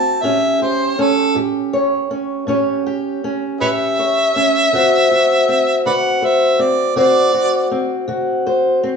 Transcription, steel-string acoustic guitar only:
0.00 0.24 C4 medium
0.00 0.19 F#4 medium
0.00 0.19 C5 medium
0.23 0.91 A2 medium
0.23 0.97 C#4 medium
0.23 0.60 G4 medium
0.62 1.35 G4 medium
0.99 2.09 C#4 medium
1.35 2.03 A2 medium
1.35 2.47 G4 medium
1.73 2.48 C#5 medium
2.11 2.47 C#4 medium
2.47 3.15 A2 medium
2.47 3.23 C#4 medium
2.47 2.85 G4 medium
2.47 3.98 C#5 medium
2.86 3.60 G4 medium
3.24 4.35 C#4 medium
3.61 4.28 A2 medium
3.61 4.68 G4 medium
3.99 4.69 C#5 medium
4.36 4.68 C#4 medium
4.73 5.40 D3 medium
4.73 5.48 C4 medium
4.73 5.10 F#4 medium
4.73 6.22 C5 medium
5.11 5.85 F#4 medium
5.48 6.59 C4 medium
5.86 6.53 D3 medium
5.86 6.96 F#4 medium
6.22 6.98 C5 medium
6.59 6.96 C4 medium
6.96 7.64 D3 medium
6.96 7.70 C4 medium
6.96 7.33 F#4 medium
6.96 8.45 C5 medium
7.34 8.07 F#4 medium
7.71 8.82 C4 medium
8.08 8.76 D3 medium
8.08 8.97 F#4 medium
8.47 8.97 C5 medium
8.83 8.97 C4 medium

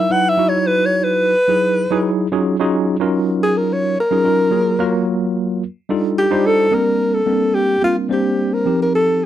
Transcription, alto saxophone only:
0.00 0.14 E5 medium
0.12 0.31 F#5 loud
0.29 0.50 E5 loud
0.49 0.69 C#5 medium
0.67 0.87 B4 loud
0.86 1.06 C#5 medium
1.04 2.11 B4 loud
3.43 3.59 G#4 loud
3.58 3.74 A#4 medium
3.73 3.98 C#5 medium
4.00 5.06 A#4 loud
6.18 6.48 G4 loud
6.46 6.75 A4 loud
6.74 7.15 A#4 loud
7.14 7.56 A4 medium
7.54 7.83 G4 medium
7.84 7.96 F4 medium
8.13 8.55 G4 medium
8.53 8.81 A#4 medium
8.82 8.94 A#4 medium
8.95 9.26 A4 loud

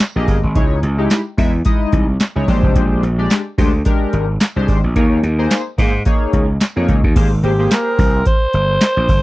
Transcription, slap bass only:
0.16 0.26 A#1 medium
0.28 0.41 G1 medium
0.43 0.57 G#1 medium
0.55 0.79 C#2 loud
0.83 1.06 C#2 loud
1.38 1.61 E2 medium
1.93 2.16 C2 loud
2.36 2.46 C#2 medium
2.48 2.61 A#1 loud
2.63 2.74 F1 medium
2.76 2.99 A#1 loud
3.03 3.26 A#1 loud
3.58 3.81 D2 medium
4.13 4.36 G#1 medium
4.56 4.66 C2 medium
4.68 4.81 G#1 medium
4.84 4.94 A#1 medium
4.96 5.19 D#2 loud
5.23 5.46 D#2 medium
5.78 6.02 G#2 medium
6.33 6.56 C#2 medium
6.77 6.87 F2 medium
6.88 7.01 C#2 medium
7.04 7.14 D#2 medium
7.16 7.39 G#1 loud
7.43 7.67 G#1 medium
7.99 8.22 C2 medium
8.54 8.77 G1 medium
8.97 9.07 A#1 medium
9.09 9.22 G1 medium

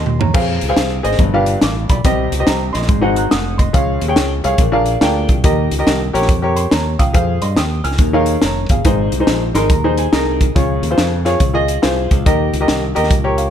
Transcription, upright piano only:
0.00 0.18 D#5 medium
0.00 0.18 C6 medium
0.20 0.60 C#5 medium
0.20 0.60 A#5 medium
0.34 0.61 G#4 medium
0.34 0.61 C5 medium
0.34 0.61 F5 medium
0.69 0.90 G#4 medium
0.69 0.90 C5 medium
0.69 0.90 F5 medium
1.03 1.19 G#4 medium
1.03 1.19 C5 medium
1.03 1.19 D#5 loud
1.20 1.86 G2 medium
1.34 1.54 D4 medium
1.34 1.55 F4 medium
1.34 1.55 G4 medium
1.34 1.55 B4 medium
1.34 1.55 F5 loud
1.64 1.89 F5 medium
1.64 1.89 D6 medium
1.90 2.30 D5 medium
1.90 2.30 B5 medium
2.04 2.70 C3 medium
2.04 2.31 G4 medium
2.04 2.32 C5 medium
2.04 2.32 D#5 medium
2.39 2.60 G4 medium
2.39 2.60 C5 medium
2.39 2.47 D#5 medium
2.47 2.73 A#5 medium
2.73 3.14 D#5 medium
2.73 3.14 C6 medium
2.88 3.55 G#2 medium
3.01 3.23 D#4 medium
3.01 3.24 F#4 medium
3.01 3.24 G#4 medium
3.01 3.24 C5 medium
3.01 3.17 F#5 medium
3.17 3.31 A#5 medium
3.17 3.31 F#6 medium
3.31 3.58 F#5 medium
3.31 3.57 D#6 medium
3.58 3.99 D#5 medium
3.58 3.99 C6 medium
3.73 4.40 C#3 medium
3.73 4.01 G#4 medium
3.73 4.01 C#5 medium
3.73 4.01 F5 loud
4.08 4.30 G#4 medium
4.08 4.30 C#5 medium
4.08 4.30 G5 medium
4.44 4.59 G#4 medium
4.44 4.60 C#5 medium
4.44 4.60 F5 loud
4.59 5.25 A#2 medium
4.72 4.94 D4 medium
4.72 4.94 F4 medium
4.72 4.94 G#4 medium
4.72 4.94 A#4 medium
4.72 4.94 F5 medium
5.01 5.34 D4 medium
5.01 5.34 F4 medium
5.01 5.34 G#4 medium
5.01 5.34 A#4 medium
5.01 5.34 G5 medium
5.44 6.10 D#3 medium
5.44 5.71 G4 medium
5.44 5.71 A#4 medium
5.44 5.72 D#5 medium
5.79 6.00 G4 medium
5.79 6.00 A#4 medium
5.79 6.01 D#5 medium
6.13 6.29 G4 medium
6.13 6.29 A#4 medium
6.13 6.30 C#5 loud
6.42 6.64 G4 medium
6.42 6.64 A#4 medium
6.42 6.65 C#5 medium
6.56 6.71 C6 medium
6.72 6.98 C#5 medium
6.72 6.97 A#5 medium
6.99 7.13 F5 medium
6.99 7.40 G5 medium
6.99 7.40 D#6 medium
7.13 7.41 G#4 medium
7.13 7.41 C5 medium
7.13 7.42 F5 loud
7.42 7.57 D#5 medium
7.42 7.57 C6 medium
7.57 7.83 G5 medium
7.57 7.83 D#6 medium
7.84 8.25 G#5 medium
7.84 8.25 F6 medium
7.99 8.65 D#3 medium
8.13 8.35 D#4 medium
8.13 8.35 G#4 medium
8.13 8.35 A#4 medium
8.13 8.35 C#5 medium
8.13 8.35 F5 loud
8.43 8.69 C#5 medium
8.43 8.69 A#5 medium
8.70 8.84 G#4 medium
8.70 9.11 F5 medium
8.85 9.51 G#2 medium
8.85 9.12 D#4 medium
8.85 9.12 G#4 medium
8.85 9.12 C5 medium
9.20 9.41 D#4 medium
9.20 9.41 G#4 medium
9.20 9.42 C5 medium
9.55 9.70 D#4 medium
9.55 9.70 G#4 medium
9.55 9.71 A#4 loud
9.55 9.70 C6 medium
9.71 9.96 A#5 medium
9.84 10.05 D#4 medium
9.84 10.05 G#4 medium
9.84 10.05 C5 medium
9.99 10.12 G#5 medium
10.12 10.45 D#4 medium
10.12 10.45 G#4 medium
10.12 10.45 A#4 loud
10.12 10.53 D#5 medium
10.56 11.22 C#3 medium
10.56 10.82 F4 medium
10.56 10.83 G#4 medium
10.56 10.83 C#5 medium
10.91 11.11 F4 medium
10.91 11.12 G#4 medium
10.91 11.12 C5 loud
11.25 11.40 F4 medium
11.25 11.41 G#4 medium
11.25 11.41 C#5 loud
11.54 11.75 F4 medium
11.54 11.75 G#4 medium
11.54 11.76 D#5 loud
11.82 12.15 F4 medium
11.82 12.15 G#4 medium
11.82 12.15 C5 loud
12.26 12.92 D#3 medium
12.26 12.53 G4 medium
12.26 12.53 A#4 medium
12.26 12.53 D#5 loud
12.60 12.82 G4 medium
12.60 12.82 A#4 medium
12.60 12.82 D#5 medium
12.95 13.11 G4 medium
12.95 13.11 A#4 medium
12.95 13.11 D#5 medium
13.24 13.46 G4 medium
13.24 13.46 A#4 medium
13.24 13.46 C#5 loud
13.38 13.50 F5 medium

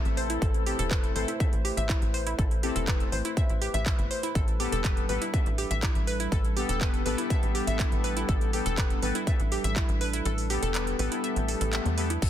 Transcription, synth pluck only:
0.17 0.21 C5 medium
0.30 0.39 E4 medium
0.42 0.46 A4 medium
0.67 0.73 G4 medium
0.79 0.85 A4 loud
0.91 1.00 B4 medium
1.16 1.19 C5 medium
1.28 1.37 E4 medium
1.40 1.44 E5 medium
1.65 1.71 G4 medium
1.77 1.83 E5 loud
1.89 1.99 E4 medium
2.14 2.18 C5 medium
2.27 2.35 E4 medium
2.39 2.42 A4 medium
2.63 2.69 G4 medium
2.76 2.82 A4 loud
2.88 2.97 B4 medium
3.12 3.16 C5 medium
3.25 3.34 E4 medium
3.37 3.41 E5 medium
3.62 3.68 G4 medium
3.74 3.80 E5 loud
3.86 3.95 E4 medium
4.11 4.14 C5 medium
4.23 4.32 E4 medium
4.35 4.39 A4 medium
4.60 4.66 G4 medium
4.72 4.78 A4 loud
4.85 4.94 B4 medium
5.09 5.13 B4 medium
5.22 5.30 E4 medium
5.34 5.37 E5 medium
5.58 5.64 G4 medium
5.71 5.77 E5 loud
5.83 5.92 E4 medium
6.07 6.11 B4 medium
6.20 6.29 E4 medium
6.32 6.36 A4 medium
6.57 6.63 G4 medium
6.69 6.75 A4 loud
6.81 6.90 B4 medium
7.06 7.09 B4 medium
7.18 7.27 E4 medium
7.30 7.34 E5 medium
7.55 7.61 G4 medium
7.67 7.73 E5 loud
7.79 7.89 E4 medium
8.04 8.08 B4 medium
8.17 8.25 E4 medium
8.29 8.32 A4 medium
8.53 8.59 G4 medium
8.66 8.72 A4 loud
8.78 8.87 B4 medium
9.03 9.06 B4 medium
9.15 9.24 E4 medium
9.27 9.31 E5 medium
9.52 9.58 G4 medium
9.64 9.70 E5 loud
9.76 9.85 E4 medium
10.01 10.05 B4 medium
10.14 10.22 E4 medium
10.26 10.29 A4 medium
10.50 10.56 G4 medium
10.63 10.68 A4 loud
10.75 10.84 B4 medium
10.99 11.03 B4 medium
11.12 11.21 E4 medium
11.24 11.27 E5 medium
11.48 11.54 A4 medium
11.61 11.70 A4 medium
11.73 11.79 E5 medium
11.98 12.04 B4 medium
12.10 12.16 E4 medium
12.22 12.26 A4 medium

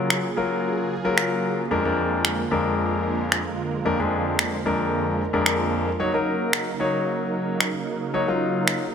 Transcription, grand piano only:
0.00 0.26 F#3 medium
0.00 0.26 F4 medium
0.00 0.26 A#4 medium
0.37 0.92 F#3 medium
0.37 0.92 F4 medium
0.37 0.92 A#4 medium
1.05 1.60 F#3 medium
1.05 1.60 F4 medium
1.05 1.60 A#4 medium
1.71 1.83 F2 medium
1.71 1.83 G#3 medium
1.71 1.83 D4 medium
1.71 1.83 A#4 medium
1.85 2.40 F2 medium
1.85 2.40 G#3 medium
1.85 2.40 D4 medium
1.85 2.40 A#4 medium
2.51 3.39 F2 medium
2.51 3.40 G#3 medium
2.51 3.40 D4 medium
2.51 3.40 A#4 medium
3.85 3.97 F2 medium
3.85 3.97 G#3 medium
3.85 3.97 D4 medium
3.85 3.97 A#4 medium
3.99 4.54 F2 medium
3.99 4.54 G#3 medium
3.99 4.54 D4 medium
3.99 4.54 G#4 medium
4.66 5.21 F2 medium
4.66 5.21 G#3 medium
4.66 5.21 D4 medium
4.66 5.21 A#4 medium
5.33 5.88 F2 medium
5.33 5.88 G#3 medium
5.33 5.88 D4 medium
5.33 5.88 A#4 medium
5.99 6.11 F#3 medium
5.99 6.11 D#4 medium
5.99 6.11 C#5 medium
6.14 6.69 F#3 medium
6.14 6.69 D#4 medium
6.14 6.69 A#4 medium
6.80 7.68 F#3 medium
6.80 7.68 D#4 medium
6.80 7.68 C#5 medium
8.14 8.25 F#3 medium
8.14 8.26 D#4 medium
8.14 8.26 C#5 medium
8.28 8.83 F#3 medium
8.28 8.83 D#4 medium
8.28 8.83 F4 medium

